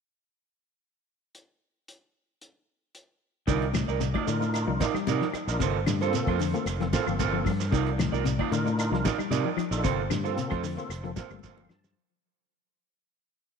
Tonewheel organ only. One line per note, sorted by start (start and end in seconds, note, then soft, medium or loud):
4.28 4.86 D4 medium
4.28 4.86 D#4 medium
4.28 4.86 F4 medium
4.28 4.87 A#4 medium
5.48 5.61 D4 medium
5.48 5.61 D#4 medium
5.48 5.61 F4 medium
5.48 5.61 A#4 medium
6.01 6.30 A#3 medium
6.01 6.30 C4 medium
6.01 6.30 F4 medium
6.01 6.31 A4 medium
6.53 6.68 A#3 medium
6.53 6.68 C4 medium
6.53 6.68 F4 medium
6.53 6.68 A4 medium
6.80 6.87 A#3 medium
6.80 6.88 C4 medium
6.80 6.88 F4 medium
6.80 6.88 A4 medium
6.93 7.52 A#3 medium
6.93 7.52 C4 medium
6.93 7.52 F4 medium
6.93 7.52 A4 medium
8.51 9.10 D4 medium
8.51 9.10 D#4 medium
8.51 9.11 F4 medium
8.51 9.11 A#4 medium
9.71 9.84 D4 medium
9.71 9.84 D#4 medium
9.71 9.85 F4 medium
9.71 9.85 A4 medium
10.23 10.53 A#3 medium
10.23 10.54 C4 medium
10.23 10.54 F4 medium
10.23 10.54 A4 medium
10.77 10.92 A#3 medium
10.77 10.92 C4 medium
10.77 10.92 F4 medium
10.77 10.93 A4 medium
11.04 11.11 A#3 medium
11.04 11.11 C4 medium
11.04 11.12 F4 medium
11.04 11.12 A4 medium
11.17 11.76 A#3 medium
11.17 11.76 C4 medium
11.17 11.76 F4 medium
11.17 11.76 A4 medium
11.44 11.68 F5 medium
11.71 11.95 A5 medium